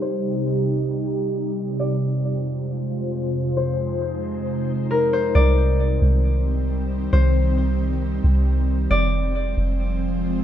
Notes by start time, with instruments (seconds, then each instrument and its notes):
Already playing: ambient pad C2 C3 G3 D#4 G4
0.02 harp C5
1.79 ambient pad F2 G#3 F4 C5, harp D5
3.57 ambient pad D#4, harp C5
4.91 harp A#4
5.13 harp C5
5.35 808-style bass C2, ambient pad D#3 G3 C4, harp D5
6.02 808-style bass C2
7.13 808-style bass C2, harp C5
8.24 808-style bass C2
8.91 808-style bass F1, ambient pad F3 G#3 C4, harp D5
9.57 808-style bass F1